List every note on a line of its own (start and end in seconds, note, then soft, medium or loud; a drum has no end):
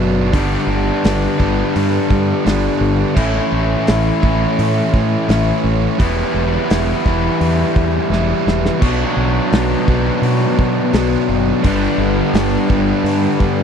0.00 0.34 F#1 medium
0.00 0.30 B2 medium
0.00 0.31 B2 medium
0.00 0.31 F#3 medium
0.00 0.31 B3 medium
0.00 0.32 B3 loud
0.00 0.32 D4 medium
0.00 0.32 D4 loud
0.32 0.56 G1 medium
0.32 1.37 G2 medium
0.32 1.38 D3 loud
0.32 1.38 G3 medium
0.32 1.38 B3 medium
0.32 1.37 D4 loud
0.32 kick loud
0.32 open hi-hat medium
0.67 0.89 G1 medium
1.04 1.26 G1 medium
1.04 snare loud
1.04 open hi-hat medium
1.38 1.62 G1 medium
1.38 2.43 G2 medium
1.38 2.44 D3 medium
1.38 2.44 G3 medium
1.38 2.44 B3 medium
1.38 2.43 D4 medium
1.38 kick medium
1.76 1.97 G2 medium
1.76 open hi-hat medium
2.10 2.32 G2 medium
2.10 kick medium
2.44 2.68 G1 medium
2.44 3.14 G2 medium
2.44 3.14 D3 medium
2.44 3.15 G3 medium
2.44 3.15 B3 medium
2.44 3.15 D4 medium
2.44 snare loud
2.44 open hi-hat medium
2.81 3.03 G1 loud
3.15 3.39 A1 medium
3.15 4.20 A2 medium
3.15 4.24 E3 medium
3.15 4.21 A3 loud
3.15 4.21 C#4 loud
3.15 4.21 E4 loud
3.15 kick loud
3.15 crash loud
3.52 3.74 A1 medium
3.87 4.10 A1 loud
3.87 snare loud
3.87 open hi-hat medium
4.21 4.44 A1 medium
4.21 5.26 A2 medium
4.21 5.27 E3 medium
4.21 5.27 A3 medium
4.21 5.27 C#4 medium
4.21 5.26 E4 medium
4.21 kick medium
4.59 4.80 A2 medium
4.59 open hi-hat medium
4.93 5.15 A2 medium
4.93 kick medium
5.28 5.51 A1 medium
5.28 5.97 A2 medium
5.28 5.97 E3 medium
5.28 5.98 A3 medium
5.28 5.98 C#4 medium
5.28 5.98 E4 medium
5.28 snare loud
5.28 open hi-hat medium
5.64 5.86 A1 loud
5.98 6.22 E1 medium
5.98 7.03 E3 medium
5.98 7.03 G3 medium
5.98 7.07 B3 loud
5.98 7.04 E4 medium
5.98 kick loud
5.98 open hi-hat medium
6.34 6.56 E1 medium
6.70 6.92 E1 medium
6.70 snare loud
6.70 open hi-hat medium
7.06 7.28 E1 medium
7.06 8.09 E3 medium
7.06 8.10 G3 medium
7.06 8.11 B3 medium
7.06 8.10 E4 medium
7.06 kick medium
7.41 7.63 E2 medium
7.41 open hi-hat medium
7.76 7.98 E2 medium
7.76 kick medium
8.10 8.32 E1 medium
8.10 8.79 E3 medium
8.10 8.80 G3 medium
8.10 8.83 B3 medium
8.10 8.81 E4 medium
8.10 snare medium
8.47 8.68 E1 medium
8.47 snare medium
8.66 snare medium
8.82 9.04 B1 medium
8.82 9.86 B2 medium
8.82 9.86 F#3 medium
8.82 9.89 B3 loud
8.82 9.88 D4 loud
8.82 kick loud
8.82 crash loud
9.17 9.39 B1 medium
9.52 9.74 B1 medium
9.52 snare loud
9.52 open hi-hat medium
9.88 10.10 B1 medium
9.88 10.92 B2 medium
9.88 10.92 F#3 medium
9.88 10.92 B3 medium
9.88 10.92 D4 medium
9.88 kick medium
10.22 10.44 B2 medium
10.22 open hi-hat medium
10.58 10.80 B2 medium
10.58 kick medium
10.93 11.15 B1 medium
10.93 11.62 B2 medium
10.93 11.62 F#3 medium
10.93 11.62 B3 medium
10.93 11.63 D4 medium
10.93 snare loud
10.93 open hi-hat medium
11.12 snare soft
11.29 11.51 F#1 medium
11.64 11.86 G1 medium
11.64 12.68 G2 medium
11.64 12.68 D3 medium
11.64 12.68 G3 loud
11.64 12.68 B3 loud
11.64 12.67 D4 loud
11.64 kick loud
11.64 open hi-hat medium
11.98 12.20 G1 medium
12.33 12.56 G1 medium
12.33 snare loud
12.33 open hi-hat medium
12.68 12.92 G1 medium
12.68 13.63 G2 medium
12.68 13.63 D3 medium
12.68 13.63 G3 medium
12.68 13.63 B3 medium
12.68 13.63 D4 medium
12.68 kick medium
13.04 13.26 G2 medium
13.04 open hi-hat medium
13.39 13.62 G2 medium
13.39 kick medium